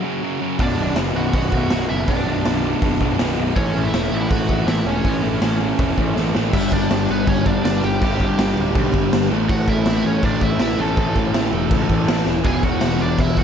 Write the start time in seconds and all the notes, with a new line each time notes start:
0.03 F#2 C#3 F#3
0.21 F#2 C#3 F#3
0.40 F#2 C#3 F#3
0.59 B0 B1 F#2 B2 D4 D5, kick, open hi-hat
0.77 B0 B1 F#2 B2
0.96 F#1 B1 F#2 B2, snare, open hi-hat
1.15 B0 B1 F#2 B2 F#4 F#5
1.33 B0 B1 F#2 B2 F#4 F#5, kick, open hi-hat
1.52 B0 B1 F#2 B2, kick
1.70 B0 B1 F#2 B2, snare, open hi-hat
1.88 F#1 B1 F#2 B2 E4 E5
2.08 B0 B1 F#2 B2 D4 D5, kick, open hi-hat
2.25 B0 B1 F#2 B2
2.44 B0 B1 F#2 B2, snare, open hi-hat
2.62 B1 F#2 B2
2.80 F#1 B1 F#2 B2 C#5, kick, open hi-hat
3.00 B0 B1 F#2 B2, kick
3.18 B0 B1 F#2 B2, snare, open hi-hat
3.37 B0 B1 F#2 B2
3.56 A1 A2 E3 A3 C#4 C#5, kick, open hi-hat
3.74 A1 A2 E3 A3
3.85 E4 E5
3.92 E1 A2 E3 A3, snare, open hi-hat
4.10 A1 A2 E3 A3
4.29 A1 A2 E3 A3 F#4 F#5, kick, open hi-hat
4.48 A1 A2 E3 A3, kick
4.66 A1 A2 E3 A3 E4 E5, snare, open hi-hat
4.86 E1 A2 E3 A3 C#4 C#5
5.04 A1 A2 E3 A3, kick, open hi-hat
5.23 A1 A2 E3 A3
5.40 A1 A2 E3 A3, snare, open hi-hat
5.59 A2 E3 A3
5.78 E1 A2 E3 A3, kick, open hi-hat
5.97 A1 A2 E3 A3, kick
6.16 A1 A2 E3 A3, snare
6.34 A1 A2 E3 A3, snare
6.52 G1 G2 D3 G3 E4 E5, kick, crash
6.72 G1 D4 D5, kick, crash
6.91 G1, snare, crash
7.09 G1 B3 B4, crash
7.27 G1 C#4 C#5, kick, crash
7.46 G1 D4 D5, kick, crash
7.65 G1 D4 D5, snare, crash
7.81 G1 G2 D3 G3 G4 G5, crash
7.99 G1 G2 D3 G3, kick, crash
8.20 G1, kick, crash
8.38 G1, snare, crash
8.57 D1, crash
8.75 B1, kick, crash
8.94 G1, kick, crash
9.13 G1, snare, crash
9.30 A1 A2 E3 A3, crash
9.49 A1 F#4 F#5, kick, crash
9.68 A1 E4 E5, kick, crash
9.86 A1, snare, crash
10.04 A1 C#4 C#5, crash
10.23 A1 D4 D5, kick, crash
10.41 A1 E4 E5, kick, crash
10.58 A1 A2 E3 A3 E4 E5, snare, crash
10.77 A1 A2 E3 A4, crash
10.81 A3 A5
10.97 A1, kick, crash
11.16 A1, kick, crash
11.34 A1, snare, crash
11.52 E1, crash
11.71 C#2, kick, crash
11.89 A1, kick, crash
12.06 A1 A2 E3 A3, snare, crash
12.27 D#1, snare
12.43 E1 E2 B2 E3 G#4, kick, crash
12.47 G#5
12.63 E1 F#4 F#5, kick, crash
12.81 E1, snare, crash
13.00 E1 D4 D5, crash
13.19 E1 E4 E5, kick, crash
13.37 E1 F#4 F#5, kick, crash